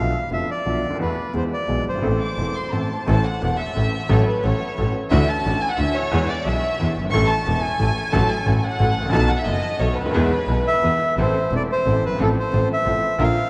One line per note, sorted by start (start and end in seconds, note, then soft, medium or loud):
0.00 0.11 B1 medium
0.00 0.12 B2 medium
0.00 0.11 D3 soft
0.00 0.11 F3 soft
0.00 0.12 B3 soft
0.00 0.11 F4 medium
0.00 0.30 F5 medium
0.31 0.46 F1 soft
0.31 0.46 F2 soft
0.31 0.46 D3 soft
0.31 0.46 F3 soft
0.31 0.46 B3 soft
0.31 0.46 F4 soft
0.31 0.50 E5 medium
0.51 0.98 D5 medium
0.65 0.80 B1 soft
0.65 0.80 B2 soft
0.65 0.80 D3 soft
0.65 0.80 F3 soft
0.65 0.80 B3 soft
0.65 0.80 F4 soft
0.83 0.91 C#2 soft
0.83 0.99 D2 soft
0.90 0.95 D2 soft
0.90 0.99 D#2 medium
0.99 1.14 E2 medium
0.99 1.15 E2 medium
0.99 1.14 E3 medium
0.99 1.14 A3 soft
0.99 1.14 B3 soft
0.99 1.14 A4 medium
0.99 1.33 B4 medium
1.33 1.48 E2 soft
1.33 1.49 E2 soft
1.33 1.49 E3 soft
1.33 1.49 G#3 soft
1.33 1.48 B3 soft
1.33 1.49 G#4 soft
1.33 1.44 C5 medium
1.53 1.85 D5 medium
1.68 1.83 B1 soft
1.68 1.83 B2 soft
1.68 1.83 E3 soft
1.68 1.83 G#3 soft
1.68 1.83 B3 soft
1.68 1.83 G#4 soft
1.86 1.94 F#1 soft
1.86 2.02 G1 soft
1.86 2.89 C5 medium
1.95 1.99 G1 soft
1.95 2.03 G#1 medium
2.02 2.18 A1 medium
2.02 2.17 A2 medium
2.02 2.17 E3 medium
2.02 2.17 A3 soft
2.02 2.18 C4 soft
2.02 2.18 A4 medium
2.21 2.53 D6 medium
2.38 2.53 E1 soft
2.38 2.53 E2 soft
2.38 2.53 E3 soft
2.38 2.53 A3 soft
2.38 2.53 C4 soft
2.38 2.53 A4 soft
2.55 2.73 C6 medium
2.72 2.88 A1 soft
2.72 2.88 A2 soft
2.72 2.88 E3 soft
2.72 2.88 A3 soft
2.72 2.88 C4 soft
2.72 2.88 A4 soft
2.72 3.07 A5 medium
3.06 3.22 A1 medium
3.06 3.23 A1 medium
3.06 3.22 A2 medium
3.06 3.22 E3 medium
3.06 3.22 A3 medium
3.06 3.22 C#4 medium
3.06 3.23 C#4 medium
3.06 3.23 E4 medium
3.06 3.23 A4 medium
3.06 3.25 A5 medium
3.25 3.60 F#5 medium
3.41 3.57 E1 soft
3.41 3.57 E1 medium
3.41 3.57 E2 soft
3.41 3.57 C#4 soft
3.41 3.57 E4 soft
3.41 3.57 A4 soft
3.59 4.10 E5 medium
3.76 3.91 A1 medium
3.76 3.91 A1 soft
3.76 3.91 A2 soft
3.76 3.91 C#4 soft
3.76 3.91 E4 soft
3.76 3.91 A4 soft
4.09 4.24 A1 medium
4.09 4.25 A1 medium
4.09 4.24 A2 medium
4.09 4.24 F#3 medium
4.09 4.24 A3 medium
4.09 4.24 C#4 medium
4.09 4.25 C#4 medium
4.09 4.25 F#4 medium
4.09 4.24 A4 medium
4.09 4.25 A4 medium
4.09 4.27 C#5 medium
4.27 4.43 B4 medium
4.44 4.58 A1 medium
4.44 4.59 A1 medium
4.44 4.58 A2 soft
4.44 4.59 C#4 soft
4.44 4.59 F#4 soft
4.44 4.59 A4 medium
4.44 4.95 C#5 medium
4.78 4.92 A1 medium
4.78 4.92 A2 soft
4.78 4.92 C#4 soft
4.78 4.92 F#4 soft
4.78 4.92 A4 medium
5.10 5.25 D2 medium
5.10 5.25 D3 medium
5.10 5.25 E3 medium
5.10 5.25 A3 medium
5.10 5.25 D4 medium
5.10 5.25 E4 medium
5.10 5.25 F#4 medium
5.10 5.26 F#4 medium
5.10 5.26 E5 medium
5.28 5.62 A5 medium
5.45 5.59 A1 medium
5.45 5.59 A2 medium
5.45 5.59 D4 medium
5.45 5.59 E4 soft
5.45 5.59 F#4 medium
5.61 5.70 G#5 medium
5.69 5.78 F#5 medium
5.78 5.92 D2 medium
5.78 5.92 D3 medium
5.78 5.92 D4 soft
5.78 5.92 E4 soft
5.78 5.93 F#4 medium
5.78 5.95 E5 medium
5.95 6.28 C#5 medium
6.11 6.26 E2 medium
6.11 6.26 E3 medium
6.11 6.26 G#3 medium
6.11 6.26 B3 medium
6.11 6.26 E4 medium
6.11 6.26 G#4 medium
6.28 6.45 D5 medium
6.45 6.60 B1 medium
6.45 6.60 B2 medium
6.45 6.60 B3 soft
6.45 6.60 E4 soft
6.45 6.60 G#4 soft
6.45 6.96 E5 medium
6.79 6.94 E2 soft
6.79 6.94 E2 medium
6.79 6.94 E3 soft
6.79 6.94 B3 soft
6.79 6.94 E4 soft
6.79 6.94 G#4 soft
6.98 7.05 F#1 soft
6.98 7.13 G1 soft
7.05 7.09 G1 soft
7.10 7.14 G#1 medium
7.10 7.28 A1 medium
7.10 7.27 E3 medium
7.10 7.27 A3 medium
7.10 7.27 C#4 medium
7.10 7.28 C#4 medium
7.10 7.28 E4 medium
7.10 7.28 C#6 loud
7.14 7.28 A1 medium
7.14 7.28 A2 medium
7.14 7.28 A4 medium
7.27 7.62 A5 medium
7.46 7.61 E1 soft
7.46 7.61 E1 medium
7.46 7.61 E2 medium
7.46 7.61 C#4 soft
7.46 7.61 E4 soft
7.46 7.61 A4 soft
7.63 8.13 G#5 medium
7.79 7.94 A1 soft
7.79 7.95 A1 medium
7.79 7.94 A2 medium
7.79 7.94 C#4 soft
7.79 7.94 E4 soft
7.79 7.94 A4 medium
8.12 8.27 A1 medium
8.12 8.28 A1 medium
8.12 8.27 A2 medium
8.12 8.27 F#3 medium
8.12 8.27 A3 medium
8.12 8.27 C#4 medium
8.12 8.27 F#4 medium
8.12 8.27 A4 medium
8.12 8.28 A4 medium
8.12 8.29 A5 medium
8.28 8.56 G#5 medium
8.46 8.60 A1 medium
8.46 8.61 A1 medium
8.46 8.61 A2 medium
8.46 8.61 C#4 soft
8.46 8.61 F#4 soft
8.46 8.61 A4 medium
8.57 8.64 G#5 medium
8.63 9.13 F#5 medium
8.79 8.94 A1 medium
8.79 8.94 A2 medium
8.79 8.94 C#4 medium
8.79 8.94 F#4 soft
8.79 8.94 A4 medium
8.96 9.12 A1 medium
9.01 9.05 G#1 medium
9.05 9.09 A1 medium
9.09 9.13 A#1 medium
9.09 9.27 B1 medium
9.09 9.27 B1 loud
9.09 9.27 B2 medium
9.09 9.27 F#3 medium
9.09 9.27 B3 medium
9.09 9.27 D#4 medium
9.09 9.27 A4 medium
9.09 9.28 A5 loud
9.13 9.27 D#4 medium
9.30 9.38 F#5 medium
9.38 9.46 E5 medium
9.45 9.60 F#1 medium
9.45 9.61 F#1 medium
9.45 9.61 F#2 medium
9.45 9.60 B3 medium
9.45 9.60 D#4 soft
9.45 9.61 A4 medium
9.45 9.79 D#5 medium
9.79 9.94 B1 medium
9.79 9.94 B2 medium
9.79 9.94 B3 medium
9.79 9.94 D#4 soft
9.79 9.94 A4 medium
9.79 9.97 C#5 medium
9.95 10.13 D2 medium
9.95 10.99 B4 medium
10.01 10.05 C#2 medium
10.06 10.10 D2 medium
10.11 10.14 D#2 medium
10.11 10.28 E2 medium
10.11 10.29 G#3 medium
10.11 10.28 B3 medium
10.11 10.28 E4 medium
10.11 10.28 G#4 medium
10.15 10.29 E2 medium
10.15 10.29 E3 medium
10.15 10.29 B3 medium
10.15 10.29 G#4 medium
10.47 10.62 B1 medium
10.47 10.63 B2 medium
10.47 10.62 B3 soft
10.47 10.63 E4 soft
10.47 10.63 G#4 soft
10.67 11.14 E5 medium
10.82 10.97 E2 medium
10.82 10.97 E2 soft
10.82 10.97 E3 medium
10.82 10.97 B3 soft
10.82 10.97 E4 soft
10.82 10.97 G#4 medium
11.17 11.31 A1 medium
11.17 11.32 A1 medium
11.17 11.32 A2 medium
11.17 11.32 E3 medium
11.17 11.32 A3 medium
11.17 11.31 C4 medium
11.17 11.32 C4 soft
11.17 11.31 E4 medium
11.17 11.31 A4 medium
11.17 11.32 A4 medium
11.21 11.54 C5 medium
11.51 11.66 E1 medium
11.51 11.66 E1 soft
11.51 11.66 E2 soft
11.51 11.66 E3 soft
11.51 11.66 A3 soft
11.51 11.65 C4 soft
11.51 11.66 C4 soft
11.51 11.65 E4 soft
11.51 11.66 A4 soft
11.56 11.63 D5 medium
11.72 12.04 C5 medium
11.85 12.00 A1 soft
11.85 12.00 A2 soft
11.85 12.00 E3 soft
11.85 12.00 A3 soft
11.85 11.99 C4 soft
11.85 12.00 C4 soft
11.85 11.99 E4 soft
11.85 11.99 A4 soft
11.85 12.00 A4 soft
12.03 12.10 F#1 soft
12.03 12.19 G1 soft
12.03 12.19 B4 medium
12.11 12.15 G1 soft
12.15 12.19 G#1 medium
12.15 12.33 A1 medium
12.15 12.33 C4 medium
12.15 12.33 F4 medium
12.15 12.33 A4 medium
12.20 12.33 A1 medium
12.20 12.33 A2 medium
12.20 12.33 F3 medium
12.20 12.33 A3 medium
12.20 12.33 C4 medium
12.20 12.33 A4 medium
12.20 12.29 A4 medium
12.40 12.69 C5 medium
12.52 12.66 A1 medium
12.52 12.67 A1 soft
12.52 12.67 A2 soft
12.52 12.67 F3 soft
12.52 12.67 A3 soft
12.52 12.66 C4 soft
12.52 12.67 C4 soft
12.52 12.66 F4 soft
12.52 12.66 A4 soft
12.52 12.67 A4 soft
12.73 13.23 E5 medium
12.86 13.00 A1 medium
12.86 13.00 A2 soft
12.86 13.00 F3 soft
12.86 13.00 A3 soft
12.86 13.00 C4 soft
12.86 13.00 F4 soft
12.86 13.00 A4 medium
12.86 13.00 A4 soft
13.18 13.33 A#1 medium
13.18 13.33 A#2 medium
13.18 13.33 D3 medium
13.18 13.33 F3 medium
13.18 13.33 A#3 medium
13.18 13.33 D4 medium
13.18 13.33 F4 medium
13.18 13.33 A#4 medium
13.23 13.50 F5 medium